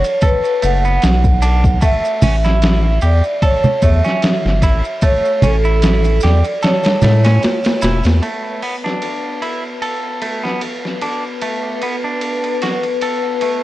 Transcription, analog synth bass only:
0, 0, Header, 1, 2, 480
1, 0, Start_track
1, 0, Tempo, 800000
1, 1096, Time_signature, 4, 2, 24, 8
1, 8179, End_track
2, 0, Start_track
2, 0, Title_t, "Analog synth bass"
2, 0, Program_c, 0, 38
2, 381, Note_on_c, 0, 30, 83
2, 592, Note_off_c, 0, 30, 0
2, 623, Note_on_c, 0, 35, 92
2, 1079, Note_off_c, 0, 35, 0
2, 1338, Note_on_c, 0, 33, 103
2, 1796, Note_off_c, 0, 33, 0
2, 1818, Note_on_c, 0, 40, 97
2, 1933, Note_off_c, 0, 40, 0
2, 2298, Note_on_c, 0, 40, 95
2, 2413, Note_off_c, 0, 40, 0
2, 2674, Note_on_c, 0, 31, 88
2, 2777, Note_on_c, 0, 33, 81
2, 2786, Note_off_c, 0, 31, 0
2, 2892, Note_off_c, 0, 33, 0
2, 3262, Note_on_c, 0, 33, 98
2, 3718, Note_off_c, 0, 33, 0
2, 3744, Note_on_c, 0, 40, 101
2, 3856, Note_off_c, 0, 40, 0
2, 4223, Note_on_c, 0, 45, 78
2, 4434, Note_off_c, 0, 45, 0
2, 4699, Note_on_c, 0, 28, 90
2, 4813, Note_off_c, 0, 28, 0
2, 4829, Note_on_c, 0, 40, 89
2, 4923, Note_off_c, 0, 40, 0
2, 8179, End_track
0, 0, End_of_file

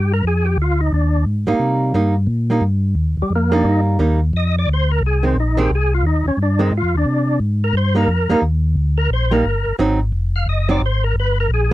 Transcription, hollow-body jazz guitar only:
0, 0, Header, 1, 2, 480
1, 0, Start_track
1, 0, Key_signature, -3, "minor"
1, 0, Tempo, 341103
1, 341, Time_signature, 4, 2, 24, 8
1, 16509, End_track
2, 0, Start_track
2, 0, Title_t, "Hollow-body jazz guitar"
2, 0, Program_c, 0, 26
2, 2068, Note_on_c, 0, 55, 73
2, 2080, Note_on_c, 0, 58, 81
2, 2084, Note_on_c, 0, 63, 78
2, 2699, Note_off_c, 0, 55, 0
2, 2704, Note_off_c, 0, 58, 0
2, 2707, Note_off_c, 0, 63, 0
2, 2733, Note_on_c, 0, 55, 57
2, 2737, Note_on_c, 0, 58, 61
2, 2747, Note_on_c, 0, 63, 75
2, 3009, Note_off_c, 0, 55, 0
2, 3011, Note_off_c, 0, 58, 0
2, 3016, Note_off_c, 0, 63, 0
2, 3518, Note_on_c, 0, 55, 55
2, 3527, Note_on_c, 0, 58, 57
2, 3537, Note_on_c, 0, 63, 68
2, 3682, Note_off_c, 0, 55, 0
2, 3686, Note_off_c, 0, 58, 0
2, 3691, Note_off_c, 0, 63, 0
2, 4949, Note_on_c, 0, 55, 62
2, 4953, Note_on_c, 0, 58, 73
2, 4969, Note_on_c, 0, 63, 79
2, 5580, Note_off_c, 0, 55, 0
2, 5582, Note_off_c, 0, 58, 0
2, 5590, Note_off_c, 0, 63, 0
2, 5615, Note_on_c, 0, 55, 64
2, 5621, Note_on_c, 0, 58, 56
2, 5625, Note_on_c, 0, 63, 62
2, 5890, Note_off_c, 0, 55, 0
2, 5894, Note_off_c, 0, 58, 0
2, 5895, Note_off_c, 0, 63, 0
2, 7361, Note_on_c, 0, 51, 60
2, 7373, Note_on_c, 0, 56, 59
2, 7378, Note_on_c, 0, 60, 59
2, 7524, Note_off_c, 0, 51, 0
2, 7530, Note_off_c, 0, 56, 0
2, 7532, Note_off_c, 0, 60, 0
2, 7842, Note_on_c, 0, 51, 73
2, 7856, Note_on_c, 0, 56, 82
2, 7856, Note_on_c, 0, 60, 84
2, 8004, Note_off_c, 0, 51, 0
2, 8011, Note_off_c, 0, 56, 0
2, 8011, Note_off_c, 0, 60, 0
2, 9275, Note_on_c, 0, 51, 70
2, 9284, Note_on_c, 0, 56, 73
2, 9292, Note_on_c, 0, 60, 69
2, 9441, Note_off_c, 0, 51, 0
2, 9445, Note_off_c, 0, 56, 0
2, 9449, Note_off_c, 0, 60, 0
2, 11185, Note_on_c, 0, 55, 55
2, 11198, Note_on_c, 0, 58, 63
2, 11207, Note_on_c, 0, 63, 71
2, 11355, Note_off_c, 0, 55, 0
2, 11362, Note_off_c, 0, 58, 0
2, 11367, Note_off_c, 0, 63, 0
2, 11674, Note_on_c, 0, 55, 73
2, 11682, Note_on_c, 0, 58, 80
2, 11696, Note_on_c, 0, 63, 88
2, 11840, Note_off_c, 0, 55, 0
2, 11844, Note_off_c, 0, 58, 0
2, 11851, Note_off_c, 0, 63, 0
2, 13105, Note_on_c, 0, 55, 70
2, 13114, Note_on_c, 0, 58, 70
2, 13121, Note_on_c, 0, 63, 70
2, 13275, Note_off_c, 0, 55, 0
2, 13279, Note_off_c, 0, 58, 0
2, 13283, Note_off_c, 0, 63, 0
2, 13774, Note_on_c, 0, 54, 74
2, 13780, Note_on_c, 0, 60, 74
2, 13789, Note_on_c, 0, 63, 87
2, 14049, Note_off_c, 0, 54, 0
2, 14052, Note_off_c, 0, 60, 0
2, 14056, Note_off_c, 0, 63, 0
2, 15039, Note_on_c, 0, 54, 69
2, 15042, Note_on_c, 0, 60, 73
2, 15049, Note_on_c, 0, 63, 69
2, 15201, Note_off_c, 0, 54, 0
2, 15202, Note_off_c, 0, 60, 0
2, 15206, Note_off_c, 0, 63, 0
2, 16509, End_track
0, 0, End_of_file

